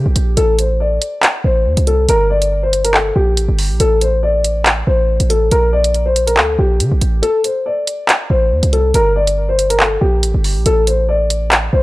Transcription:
0.00 0.33 G4 medium
0.06 0.15 A#1 loud
0.16 0.36 A#1 loud
0.16 closed hi-hat medium
0.37 0.99 A1 loud
0.37 0.53 A4 loud
0.37 closed hi-hat medium
0.59 0.75 C5 medium
0.59 closed hi-hat medium
0.80 1.20 D5 medium
1.02 closed hi-hat medium
1.23 clap loud
1.23 closed hi-hat medium
1.44 1.67 A1 loud
1.44 1.85 C5 medium
1.66 1.77 E2 loud
1.77 2.07 C2 loud
1.77 closed hi-hat medium
1.87 2.04 A4 medium
1.87 closed hi-hat medium
2.09 3.12 G1 loud
2.09 2.25 A#4 loud
2.09 closed hi-hat medium
2.30 2.61 D5 loud
2.42 closed hi-hat medium
2.63 2.79 C5 medium
2.73 closed hi-hat medium
2.84 2.92 A#4 medium
2.84 closed hi-hat medium
2.94 3.11 A4 medium
2.94 clap loud
3.16 3.39 A#1 loud
3.16 3.76 G4 medium
3.37 3.48 A1 medium
3.37 closed hi-hat medium
3.48 3.71 G1 loud
3.59 open hi-hat medium
3.70 3.79 A#1 loud
3.80 4.83 A1 loud
3.80 3.97 A4 loud
3.80 closed hi-hat medium
4.01 4.18 C5 medium
4.01 closed hi-hat medium
4.23 4.63 D5 medium
4.44 closed hi-hat medium
4.66 clap loud
4.66 closed hi-hat medium
4.87 5.19 A1 loud
4.87 5.27 C5 medium
5.20 5.50 A1 loud
5.20 closed hi-hat medium
5.30 5.46 A4 medium
5.30 closed hi-hat medium
5.51 6.39 A#1 loud
5.51 5.68 A#4 loud
5.51 closed hi-hat medium
5.73 6.04 D5 medium
5.84 closed hi-hat medium
5.94 closed hi-hat soft
6.06 6.22 C5 medium
6.16 closed hi-hat medium
6.27 6.35 A#4 medium
6.27 closed hi-hat medium
6.37 6.58 D2 loud
6.37 6.53 A4 medium
6.37 clap loud
6.59 6.82 A#1 loud
6.59 7.19 G4 medium
6.80 6.91 D3 loud
6.80 closed hi-hat medium
6.91 7.01 A#1 loud
7.01 7.22 A1 loud
7.01 closed hi-hat medium
7.22 7.39 A4 loud
7.22 closed hi-hat medium
7.44 7.61 C5 medium
7.44 closed hi-hat medium
7.66 8.06 D5 medium
7.87 closed hi-hat medium
8.09 clap loud
8.09 closed hi-hat medium
8.30 8.53 A1 loud
8.30 8.70 C5 medium
8.51 8.62 E2 loud
8.63 8.93 C2 loud
8.63 closed hi-hat medium
8.73 8.89 A4 medium
8.73 closed hi-hat medium
8.94 9.97 G1 loud
8.94 9.11 A#4 loud
8.94 closed hi-hat medium
9.16 9.47 D5 medium
9.27 closed hi-hat medium
9.49 9.65 C5 medium
9.59 closed hi-hat medium
9.70 9.78 A#4 medium
9.70 closed hi-hat medium
9.80 9.96 A4 medium
9.80 clap loud
10.01 10.25 A#1 loud
10.01 10.62 G4 medium
10.23 10.34 A1 medium
10.23 closed hi-hat medium
10.34 10.57 G1 loud
10.44 open hi-hat medium
10.56 10.65 A#1 loud
10.66 11.69 A1 loud
10.66 10.82 A4 loud
10.66 closed hi-hat medium
10.87 11.04 C5 medium
10.87 closed hi-hat medium
11.09 11.49 D5 medium
11.30 closed hi-hat medium
11.52 clap loud
11.52 closed hi-hat medium
11.73 11.83 A1 loud
11.73 11.83 C5 medium

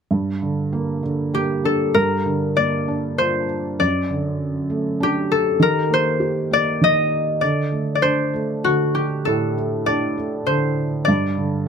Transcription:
0.11 1.90 G2 medium
0.42 1.01 D3 soft
0.73 1.32 A#3 soft
1.03 1.92 D3 soft
1.34 1.93 A#3 soft
1.34 3.70 G4 medium
1.64 1.94 D4 soft
1.64 2.00 A4 medium
1.94 3.76 G2 medium
1.94 4.07 A#4 medium
2.26 3.46 D3 soft
2.57 3.76 A#3 medium
2.57 3.79 D5 medium
2.88 3.77 D4 soft
3.18 3.78 F4 soft
3.18 5.16 C5 medium
3.80 5.56 F#2 medium
3.80 5.64 D5 medium
4.11 5.27 D3 soft
4.70 5.57 A3 medium
5.00 5.58 D4 medium
5.00 7.39 G4 medium
5.32 5.68 A4 medium
5.60 6.80 D#3 medium
5.60 7.75 A#4 medium
5.90 6.50 A#3 soft
5.90 7.92 C5 medium
6.20 7.37 G4 soft
6.51 7.39 A#3 soft
6.51 6.90 D5 medium
6.81 7.40 D#3 soft
6.81 7.47 D#5 medium
7.41 8.64 D3 medium
7.41 7.95 D5 medium
7.72 8.32 A3 soft
7.95 9.80 D5 medium
8.02 9.22 D4 soft
8.02 10.00 C5 medium
8.34 9.53 A3 soft
8.64 9.84 D3 soft
8.64 9.01 F#4 medium
8.95 11.30 G4 medium
9.25 11.04 A2 medium
9.25 11.45 A4 medium
9.57 10.16 A3 soft
9.86 11.04 D4 soft
9.86 11.04 D5 medium
10.18 11.05 A3 soft
10.46 11.05 D3 soft
10.46 11.68 C5 medium
11.05 11.68 G2 medium
11.05 11.68 D5 medium
11.37 11.68 D3 soft

